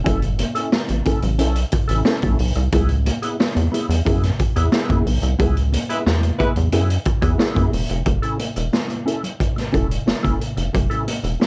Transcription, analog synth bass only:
0, 0, Header, 1, 2, 480
1, 0, Start_track
1, 0, Key_signature, 3, "minor"
1, 0, Tempo, 667408
1, 47, Time_signature, 4, 2, 24, 8
1, 8248, End_track
2, 0, Start_track
2, 0, Title_t, "Analog synth bass"
2, 0, Program_c, 0, 38
2, 44, Note_on_c, 0, 30, 97
2, 316, Note_off_c, 0, 30, 0
2, 646, Note_on_c, 0, 33, 77
2, 736, Note_off_c, 0, 33, 0
2, 883, Note_on_c, 0, 33, 96
2, 1004, Note_on_c, 0, 35, 102
2, 1014, Note_off_c, 0, 33, 0
2, 1185, Note_off_c, 0, 35, 0
2, 1369, Note_on_c, 0, 33, 80
2, 1457, Note_off_c, 0, 33, 0
2, 1606, Note_on_c, 0, 35, 85
2, 1695, Note_off_c, 0, 35, 0
2, 1725, Note_on_c, 0, 35, 89
2, 1815, Note_off_c, 0, 35, 0
2, 1843, Note_on_c, 0, 36, 96
2, 1934, Note_off_c, 0, 36, 0
2, 1963, Note_on_c, 0, 37, 106
2, 2234, Note_off_c, 0, 37, 0
2, 2563, Note_on_c, 0, 40, 93
2, 2653, Note_off_c, 0, 40, 0
2, 2798, Note_on_c, 0, 40, 91
2, 2890, Note_off_c, 0, 40, 0
2, 2924, Note_on_c, 0, 42, 88
2, 3104, Note_off_c, 0, 42, 0
2, 3281, Note_on_c, 0, 40, 89
2, 3372, Note_off_c, 0, 40, 0
2, 3525, Note_on_c, 0, 42, 84
2, 3614, Note_off_c, 0, 42, 0
2, 3639, Note_on_c, 0, 35, 79
2, 3730, Note_off_c, 0, 35, 0
2, 3759, Note_on_c, 0, 36, 99
2, 3850, Note_off_c, 0, 36, 0
2, 3882, Note_on_c, 0, 37, 96
2, 4153, Note_off_c, 0, 37, 0
2, 4362, Note_on_c, 0, 40, 91
2, 4542, Note_off_c, 0, 40, 0
2, 4725, Note_on_c, 0, 40, 96
2, 4814, Note_off_c, 0, 40, 0
2, 4839, Note_on_c, 0, 42, 98
2, 5021, Note_off_c, 0, 42, 0
2, 5197, Note_on_c, 0, 40, 95
2, 5288, Note_off_c, 0, 40, 0
2, 5440, Note_on_c, 0, 42, 91
2, 5531, Note_off_c, 0, 42, 0
2, 5561, Note_on_c, 0, 28, 94
2, 5651, Note_off_c, 0, 28, 0
2, 5682, Note_on_c, 0, 29, 103
2, 5773, Note_off_c, 0, 29, 0
2, 5799, Note_on_c, 0, 30, 94
2, 5890, Note_off_c, 0, 30, 0
2, 6162, Note_on_c, 0, 28, 87
2, 6252, Note_off_c, 0, 28, 0
2, 7007, Note_on_c, 0, 28, 87
2, 7187, Note_off_c, 0, 28, 0
2, 7245, Note_on_c, 0, 30, 45
2, 7293, Note_off_c, 0, 30, 0
2, 7369, Note_on_c, 0, 30, 76
2, 7458, Note_off_c, 0, 30, 0
2, 7603, Note_on_c, 0, 29, 79
2, 7695, Note_off_c, 0, 29, 0
2, 7730, Note_on_c, 0, 30, 92
2, 7820, Note_off_c, 0, 30, 0
2, 8081, Note_on_c, 0, 28, 91
2, 8174, Note_off_c, 0, 28, 0
2, 8248, End_track
0, 0, End_of_file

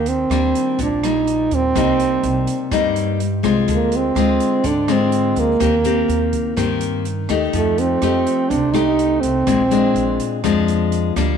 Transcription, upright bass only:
0, 0, Header, 1, 2, 480
1, 0, Start_track
1, 0, Key_signature, -3, "minor"
1, 0, Tempo, 482703
1, 1734, Time_signature, 4, 2, 24, 8
1, 11312, End_track
2, 0, Start_track
2, 0, Title_t, "Upright bass"
2, 0, Program_c, 0, 32
2, 0, Note_on_c, 0, 39, 83
2, 265, Note_off_c, 0, 39, 0
2, 296, Note_on_c, 0, 39, 82
2, 518, Note_off_c, 0, 39, 0
2, 782, Note_on_c, 0, 34, 88
2, 1458, Note_off_c, 0, 34, 0
2, 1502, Note_on_c, 0, 39, 75
2, 1722, Note_off_c, 0, 39, 0
2, 1740, Note_on_c, 0, 36, 86
2, 2184, Note_off_c, 0, 36, 0
2, 2220, Note_on_c, 0, 36, 83
2, 2440, Note_off_c, 0, 36, 0
2, 2698, Note_on_c, 0, 43, 93
2, 3376, Note_off_c, 0, 43, 0
2, 3414, Note_on_c, 0, 36, 75
2, 3638, Note_off_c, 0, 36, 0
2, 3654, Note_on_c, 0, 38, 84
2, 4101, Note_off_c, 0, 38, 0
2, 4128, Note_on_c, 0, 38, 82
2, 4354, Note_off_c, 0, 38, 0
2, 4616, Note_on_c, 0, 44, 89
2, 5296, Note_off_c, 0, 44, 0
2, 5328, Note_on_c, 0, 38, 77
2, 5554, Note_off_c, 0, 38, 0
2, 5578, Note_on_c, 0, 39, 84
2, 6023, Note_off_c, 0, 39, 0
2, 6050, Note_on_c, 0, 39, 79
2, 6275, Note_off_c, 0, 39, 0
2, 6531, Note_on_c, 0, 43, 88
2, 7214, Note_off_c, 0, 43, 0
2, 7252, Note_on_c, 0, 39, 71
2, 7477, Note_off_c, 0, 39, 0
2, 7489, Note_on_c, 0, 41, 84
2, 7939, Note_off_c, 0, 41, 0
2, 7971, Note_on_c, 0, 41, 79
2, 8196, Note_off_c, 0, 41, 0
2, 8454, Note_on_c, 0, 36, 89
2, 9136, Note_off_c, 0, 36, 0
2, 9179, Note_on_c, 0, 36, 74
2, 9401, Note_off_c, 0, 36, 0
2, 9413, Note_on_c, 0, 34, 81
2, 9861, Note_off_c, 0, 34, 0
2, 9889, Note_on_c, 0, 34, 79
2, 10116, Note_off_c, 0, 34, 0
2, 10378, Note_on_c, 0, 41, 97
2, 11058, Note_off_c, 0, 41, 0
2, 11098, Note_on_c, 0, 38, 81
2, 11312, Note_off_c, 0, 38, 0
2, 11312, End_track
0, 0, End_of_file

